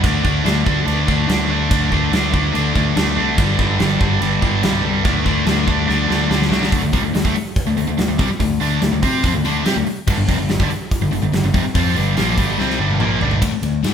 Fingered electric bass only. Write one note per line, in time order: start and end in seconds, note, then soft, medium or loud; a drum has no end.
0.04 0.23 D2 loud
0.25 0.44 D2 medium
0.44 0.65 D2 medium
0.67 0.86 D2 medium
0.87 1.07 D2 medium
1.08 1.28 D2 medium
1.29 1.69 D2 medium
1.71 2.11 D2 medium
2.12 2.52 D2 loud
2.54 2.74 D2 medium
2.76 2.95 D2 medium
2.96 3.16 D2 medium
3.17 3.37 C2 medium
3.38 3.58 G1 loud
3.59 3.79 G1 medium
3.80 4.00 G1 loud
4.01 4.20 G1 medium
4.21 4.41 G1 medium
4.42 4.62 G1 medium
4.64 5.04 C2 medium
5.05 5.45 D2 medium
5.47 5.87 D2 loud
5.89 6.09 D2 loud
6.10 6.30 D2 medium
6.30 6.50 D2 loud
6.51 6.71 C2 medium
6.72 6.82 D2 loud
6.82 6.92 D2 medium
6.94 7.03 C2 loud
7.04 7.14 D2 medium
7.14 7.24 D2 medium
7.25 7.35 D2 loud
7.36 muted fingered electric bass stroke soft
7.67 7.76 D2 medium
7.78 7.87 D2 medium
7.88 7.97 D2 medium
7.98 8.08 D2 medium
8.09 8.19 D2 medium
8.19 8.29 C2 loud
8.29 muted fingered electric bass stroke soft
8.40 8.60 D2 medium
8.61 8.80 D2 loud
8.82 8.92 D2 medium
8.93 9.02 D2 medium
9.03 9.22 C3 medium
9.24 9.34 F2 loud
9.34 9.44 D2 medium
9.45 9.64 D2 medium
9.66 9.75 C3 medium
9.76 9.86 D2 medium
9.87 muted fingered electric bass stroke soft
10.08 10.17 G1 loud
10.18 10.28 G1 medium
10.29 10.38 F1 loud
10.38 10.48 G1 medium
10.49 10.59 G1 medium
10.60 10.69 G1 medium
10.70 muted fingered electric bass stroke soft
11.02 11.11 G1 medium
11.12 11.22 G1 medium
11.23 11.32 G1 medium
11.32 11.42 G1 medium
11.43 11.53 G1 medium
11.54 11.64 F1 loud
11.64 muted fingered electric bass stroke soft
11.75 11.94 F2 medium
11.96 12.15 G1 loud
12.18 12.36 A#1 loud
12.38 12.57 G1 medium
12.58 12.78 C2 medium
12.79 12.98 G1 medium
13.00 13.19 A#1 medium
13.21 13.40 G1 medium
13.42 13.52 D2 medium
13.52 muted fingered electric bass stroke soft
13.62 13.82 D2 medium
13.83 13.93 G#2 medium